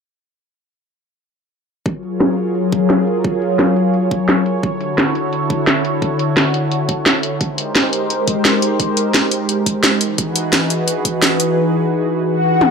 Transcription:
1.86 4.61 F#3 medium
1.86 4.61 F4 medium
1.86 4.61 G#4 medium
1.86 4.61 A#4 medium
1.86 7.37 C#5 medium
1.86 kick loud
2.03 closed hi-hat medium
2.20 snare loud
2.20 closed hi-hat medium
2.38 closed hi-hat medium
2.55 closed hi-hat medium
2.72 kick medium
2.72 closed hi-hat medium
2.90 snare loud
2.90 closed hi-hat medium
3.07 closed hi-hat medium
3.25 kick loud
3.42 closed hi-hat medium
3.59 snare loud
3.59 closed hi-hat medium
3.76 closed hi-hat medium
3.94 closed hi-hat medium
4.11 kick loud
4.11 closed hi-hat medium
4.29 snare loud
4.29 closed hi-hat medium
4.46 closed hi-hat medium
4.63 7.38 D3 medium
4.63 7.38 E4 medium
4.63 7.38 F#4 medium
4.63 7.38 A4 medium
4.63 kick loud
4.63 closed hi-hat medium
4.81 closed hi-hat medium
4.98 snare loud
4.98 closed hi-hat medium
5.15 closed hi-hat medium
5.33 closed hi-hat medium
5.50 kick loud
5.50 closed hi-hat medium
5.67 snare loud
5.67 closed hi-hat medium
5.85 closed hi-hat medium
6.02 kick loud
6.02 closed hi-hat medium
6.19 closed hi-hat medium
6.37 snare loud
6.37 closed hi-hat medium
6.54 closed hi-hat medium
6.71 closed hi-hat medium
6.89 kick loud
6.89 closed hi-hat medium
7.06 snare loud
7.06 closed hi-hat medium
7.23 closed hi-hat medium
7.41 9.98 G#3 medium
7.41 9.98 D#4 medium
7.41 9.98 G4 medium
7.41 9.98 A#4 medium
7.41 9.98 C5 medium
7.41 kick loud
7.41 closed hi-hat medium
7.58 closed hi-hat medium
7.75 snare loud
7.75 closed hi-hat medium
7.93 closed hi-hat medium
8.10 closed hi-hat medium
8.28 kick loud
8.28 closed hi-hat medium
8.45 snare loud
8.45 closed hi-hat medium
8.62 closed hi-hat medium
8.80 kick loud
8.80 closed hi-hat medium
8.97 closed hi-hat medium
9.14 snare loud
9.14 closed hi-hat medium
9.31 closed hi-hat medium
9.49 closed hi-hat medium
9.66 kick medium
9.66 closed hi-hat medium
9.84 snare loud
9.84 closed hi-hat medium
10.01 12.71 E3 medium
10.01 12.71 D#4 medium
10.01 12.71 F#4 medium
10.01 12.71 G#4 medium
10.01 12.71 B4 medium
10.01 closed hi-hat medium
10.18 kick loud
10.18 closed hi-hat medium
10.36 closed hi-hat medium
10.53 snare loud
10.53 closed hi-hat medium
10.70 closed hi-hat medium
10.88 closed hi-hat medium
11.05 kick medium
11.05 closed hi-hat medium
11.22 snare loud
11.22 closed hi-hat medium
11.40 closed hi-hat medium
12.26 swell medium
12.61 high tom medium

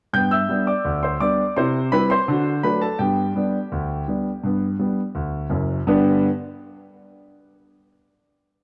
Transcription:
0.13 0.44 G2 medium
0.13 0.35 B3 soft
0.13 0.31 G5 medium
0.13 0.32 G6 medium
0.31 0.65 E5 medium
0.31 0.65 E6 medium
0.49 0.69 G3 soft
0.49 0.69 B3 soft
0.49 0.69 D4 soft
0.67 1.01 D5 soft
0.67 1.01 D6 medium
0.85 1.15 D2 medium
1.03 1.20 C5 medium
1.03 1.21 C6 medium
1.20 1.40 G3 soft
1.20 1.40 B3 soft
1.20 1.41 D4 soft
1.20 1.54 D5 medium
1.20 1.49 D6 medium
1.57 1.87 C3 medium
1.57 1.78 E4 soft
1.57 1.90 C5 medium
1.57 1.85 C6 medium
1.92 2.12 G3 medium
1.92 2.12 C4 medium
1.92 2.12 E4 medium
1.92 2.09 B4 medium
1.92 2.10 B5 loud
2.10 2.61 C5 medium
2.10 2.53 C6 medium
2.28 2.58 D3 medium
2.28 2.49 F#4 soft
2.63 2.83 F#3 soft
2.63 2.84 A3 soft
2.63 2.84 D4 soft
2.63 2.81 B4 medium
2.63 2.81 B5 medium
2.81 2.99 A4 medium
2.81 2.99 A5 medium
2.99 3.30 G2 medium
2.99 3.20 B3 soft
2.99 5.11 G4 medium
2.99 4.71 G5 medium
3.35 3.55 G3 soft
3.35 3.56 B3 soft
3.35 3.56 D4 soft
3.72 4.02 D2 medium
4.08 4.27 G3 soft
4.08 4.28 B3 soft
4.08 4.28 D4 soft
4.43 4.74 G2 medium
4.43 4.65 B3 soft
4.79 4.99 G3 soft
4.79 4.99 B3 soft
4.79 5.00 D4 soft
5.15 5.45 D2 medium
5.50 5.79 F#1 medium
5.50 5.79 F#2 medium
5.87 6.27 G2 medium
5.87 6.27 D3 medium
5.87 6.27 B3 medium
5.87 6.27 D4 medium
5.87 6.27 G4 medium
5.87 6.27 B4 medium

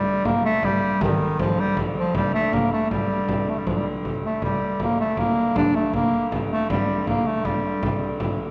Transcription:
0.00 4.04 G2 medium
0.00 4.04 D3 medium
0.00 0.27 G3 medium
0.25 0.45 A#3 medium
0.25 frame drum medium
0.45 0.66 A3 medium
0.45 frame drum soft
0.63 1.04 G3 medium
0.63 frame drum medium
0.83 frame drum soft
1.01 1.42 D#3 medium
1.01 frame drum medium
1.39 1.62 F3 medium
1.39 frame drum medium
1.58 1.78 G3 medium
1.58 frame drum soft
1.77 frame drum medium
1.99 2.15 F3 medium
2.15 2.33 G3 medium
2.15 frame drum medium
2.34 2.55 A3 medium
2.53 2.72 A#3 medium
2.53 frame drum medium
2.72 2.90 A3 medium
2.72 frame drum soft
2.91 3.51 G3 medium
2.91 frame drum medium
3.10 frame drum soft
3.29 frame drum medium
3.49 3.60 A3 medium
3.58 3.69 G3 medium
3.67 3.79 F3 medium
3.67 frame drum medium
3.78 3.86 G3 medium
4.04 8.51 G2 medium
4.04 8.51 D3 medium
4.04 frame drum medium
4.24 4.42 A3 medium
4.24 frame drum soft
4.42 4.79 G3 medium
4.42 frame drum medium
4.80 4.99 A#3 medium
4.80 frame drum medium
4.99 5.20 A3 medium
4.99 frame drum soft
5.17 5.56 A#3 medium
5.17 frame drum medium
5.36 frame drum soft
5.56 5.77 D4 medium
5.56 frame drum medium
5.75 5.94 A3 medium
5.93 6.30 A#3 medium
5.93 frame drum medium
6.13 frame drum soft
6.32 frame drum medium
6.51 6.69 A3 medium
6.51 frame drum soft
6.70 7.05 G3 medium
6.70 frame drum medium
7.07 7.28 A#3 medium
7.07 frame drum medium
7.26 7.47 A3 medium
7.26 frame drum soft
7.45 8.21 G3 medium
7.45 frame drum medium
7.63 frame drum soft
7.83 frame drum medium
8.20 frame drum medium
8.40 frame drum soft

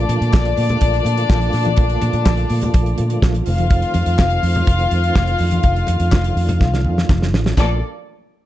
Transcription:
0.00 3.44 D3 medium
0.00 7.54 F3 medium
0.00 3.44 A3 medium
0.00 3.44 A#3 medium
0.00 3.19 D4 medium
0.00 7.54 F4 medium
0.00 3.18 D5 loud
0.09 0.18 A#2 medium
0.09 closed hi-hat medium
0.09 muted conga medium
0.21 0.30 A#2 loud
0.21 closed hi-hat soft
0.33 0.52 A#1 loud
0.33 kick loud
0.33 snare loud
0.33 clap loud
0.33 high conga medium
0.45 closed hi-hat soft
0.57 0.76 A#2 loud
0.57 open hi-hat medium
0.69 closed hi-hat medium
0.69 low conga medium
0.81 0.99 A#1 medium
0.81 kick medium
0.81 closed hi-hat medium
0.81 muted conga medium
0.94 closed hi-hat soft
1.05 1.23 A#2 loud
1.05 closed hi-hat medium
1.05 muted conga soft
1.18 closed hi-hat soft
1.30 1.48 A#1 loud
1.30 kick loud
1.30 snare loud
1.30 clap medium
1.30 high conga medium
1.42 closed hi-hat soft
1.53 1.79 A#2 medium
1.53 snare soft
1.53 open hi-hat medium
1.65 closed hi-hat medium
1.65 high conga medium
1.76 1.96 A#1 loud
1.76 kick loud
1.76 closed hi-hat medium
1.76 muted conga medium
1.90 closed hi-hat soft
2.01 2.11 A#2 loud
2.01 closed hi-hat medium
2.01 muted conga medium
2.13 2.23 A#2 loud
2.13 closed hi-hat soft
2.26 2.44 A#1 loud
2.26 kick loud
2.26 snare loud
2.26 clap loud
2.26 high conga medium
2.37 closed hi-hat soft
2.50 2.68 A#2 medium
2.50 open hi-hat medium
2.62 closed hi-hat medium
2.62 low conga medium
2.74 2.92 A#1 medium
2.74 kick loud
2.74 closed hi-hat medium
2.74 muted conga medium
2.86 closed hi-hat soft
2.98 3.17 A#2 medium
2.98 closed hi-hat medium
2.98 muted conga soft
3.10 closed hi-hat soft
3.22 3.40 A#1 loud
3.22 kick loud
3.22 snare loud
3.22 clap medium
3.22 high conga medium
3.34 closed hi-hat soft
3.46 3.83 F1 loud
3.46 7.54 D#3 medium
3.46 7.54 A3 medium
3.46 5.39 C4 medium
3.46 7.05 F4 medium
3.46 7.05 F5 loud
3.46 open hi-hat medium
3.58 closed hi-hat medium
3.58 high conga medium
3.70 kick loud
3.70 closed hi-hat medium
3.70 muted conga medium
3.82 closed hi-hat soft
3.94 4.04 F2 medium
3.94 closed hi-hat medium
3.94 muted conga medium
4.06 4.16 F2 loud
4.06 closed hi-hat soft
4.19 4.37 F1 loud
4.19 kick loud
4.19 snare loud
4.19 clap loud
4.19 high conga medium
4.30 closed hi-hat soft
4.43 4.61 F2 medium
4.43 open hi-hat medium
4.55 closed hi-hat soft
4.55 low conga medium
4.67 4.85 F1 loud
4.67 kick loud
4.67 closed hi-hat medium
4.67 muted conga medium
4.79 closed hi-hat soft
4.91 5.10 F2 loud
4.91 closed hi-hat medium
5.04 closed hi-hat soft
5.15 5.34 F1 loud
5.15 kick loud
5.15 snare loud
5.15 clap medium
5.15 high conga medium
5.27 closed hi-hat soft
5.38 5.58 F2 medium
5.38 7.56 D4 medium
5.38 open hi-hat medium
5.51 closed hi-hat medium
5.51 high conga medium
5.63 5.82 F1 loud
5.63 kick loud
5.63 closed hi-hat medium
5.63 muted conga medium
5.76 closed hi-hat soft
5.87 5.97 F2 medium
5.87 closed hi-hat medium
5.87 muted conga medium
6.00 6.09 F2 medium
6.00 closed hi-hat medium
6.12 6.30 F1 medium
6.12 kick loud
6.12 snare loud
6.12 clap loud
6.12 high conga medium
6.24 closed hi-hat medium
6.36 6.62 F2 medium
6.36 open hi-hat medium
6.49 closed hi-hat medium
6.49 low conga medium
6.61 6.86 C2 medium
6.61 kick medium
6.61 snare medium
6.61 muted conga soft
6.74 snare medium
6.84 7.03 F2 loud
6.84 muted conga soft
6.98 snare medium
7.09 7.34 F1 medium
7.09 kick loud
7.09 snare medium
7.09 clap medium
7.09 high conga medium
7.22 snare medium
7.34 7.51 A1 medium
7.34 snare loud
7.46 snare loud
7.46 high conga medium
7.57 7.80 A#1 medium
7.57 7.80 A#2 medium
7.57 7.80 F3 medium
7.57 7.80 A3 medium
7.57 7.80 A#3 medium
7.57 7.80 D4 medium
7.57 7.80 F4 medium
7.57 7.80 A4 medium
7.57 7.80 D5 medium
7.57 kick loud
7.57 snare medium
7.57 clap medium
7.57 china medium
7.57 muted conga medium

